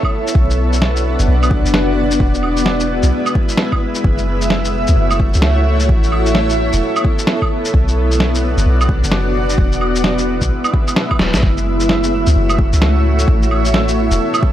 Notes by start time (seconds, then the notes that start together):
Already playing: B3 E4 A4 C#5 E5
0.03 kick, claves
0.27 shaker
0.35 B1 D4 F#4 D5 F#5, kick
0.50 shaker
0.73 shaker
0.82 snare
0.96 shaker
1.19 F#1, shaker
1.28 B1
1.43 claves, shaker
1.51 kick
1.65 F#1, shaker
1.74 snare
2.11 shaker
2.19 E1 G#3 E4 B4 E5, kick
2.34 shaker
2.43 claves
2.57 shaker
2.66 snare
2.80 shaker
3.03 B1, shaker
3.26 claves, shaker
3.35 kick
3.49 shaker
3.58 snare
3.72 kick, claves
3.95 shaker
4.04 F#1 A3 E4 F#4 C#5, kick
4.18 shaker
4.42 shaker
4.50 snare
4.65 shaker
4.87 C#2, shaker
4.97 F#1
5.11 claves, shaker
5.20 kick
5.34 C#2, shaker
5.42 snare
5.80 shaker
5.89 A1 B3 A4, kick
6.03 shaker
6.12 claves
6.26 shaker
6.35 snare
6.50 shaker
6.73 E1, shaker
6.96 claves, shaker
7.05 kick
7.19 shaker
7.27 snare
7.42 kick, claves
7.65 shaker
7.74 B1 D4 F#4 D5 F#5, kick
7.88 shaker
8.12 shaker
8.20 snare
8.35 shaker
8.57 F#1, shaker
8.66 B1
8.81 claves, shaker
8.89 kick
9.04 F#1, shaker
9.12 snare
9.50 shaker
9.58 E1 G#3 E4 B4 E5, kick
9.72 shaker
9.81 claves
9.96 shaker
10.04 snare
10.18 shaker
10.42 B1, kick, shaker
10.64 claves, shaker
10.74 kick
10.88 claves, shaker
10.96 snare
11.11 kick, claves
11.19 D1, snare
11.34 B1, snare, shaker
11.43 F#1 A3 F#4 C#5, kick
11.57 shaker
11.80 shaker
11.89 snare
12.04 shaker
12.27 C#2, shaker
12.36 F#1
12.49 claves, shaker
12.59 kick
12.73 C#2, shaker
12.82 snare
13.19 shaker
13.27 A1 B3 A4, kick
13.42 shaker
13.51 claves
13.65 shaker
13.74 snare
13.88 shaker
14.11 E1, shaker
14.34 claves, shaker
14.43 kick